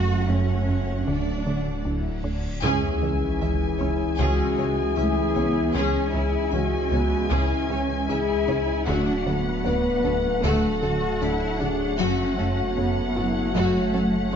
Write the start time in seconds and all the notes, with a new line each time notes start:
Already playing: F#1 F#2 F#3 A3 C#4 F#4 F#5, reverse cymbal
0.29 F#2 A3 C#4 C#5
0.69 F#2 F#4
1.07 D1 D2 D3 D4 D5
1.47 D3 A3
1.85 D2 D4 E4
2.23 D2 D4
2.62 C#2 C#3 E3 C#4 E4 G#4 E5 G#5, sub drop
3.02 C#2 E3 C#4 C#5
3.40 C#2 E3 C#4 E5
3.79 C#2 C#4 C#5
4.17 C#2 C#3 G#3 C#4 F#4 G#4
4.56 C#2 C#3 G#3 C#4 C#5
4.96 C#2 A3 C#4 E4 E5
5.34 C#2 B3 C#4 C#5
5.74 C#2 C#3 E3 G#3 C#4 G#4 E5 G#5
6.11 C#2 E3 C#4 E4 C#5
6.51 C#2 E3 C#4 F#4 E5
6.91 C#2 B3 C#4 C#5
7.29 C#2 C#3 C#4 E4 G#4
7.69 C#2 C#3 G#3 C#4 C#5
8.09 C#2 C#4 E4 G#4 E5
8.47 C#2 C#4 C#5
8.87 D1 D2 D3 F#3 A3 D4 F#4 F#5
9.26 D2 F#3 A3 B3 A4
9.65 D2 F#3 A3 B4 D5
10.04 D2 A3 D4 A4
10.43 D2 D3 A3 F#4 A4
10.82 D2 D3 A3 F#4 A4
11.21 D2 A3 D4 E4 D5
11.60 D2 A3 D4 G#4 A4
11.99 F#1 F#2 F#3 A3 C#4 F#4 C#5
12.38 F#2 A3 A4
12.76 F#2 A3 B3 C#5
13.15 F#2 A3 E4 F#4 A4
13.53 F#2 F#3 A3 F#4
13.92 F#2 F#3 A3 C#4 A4
14.31 A3 C#5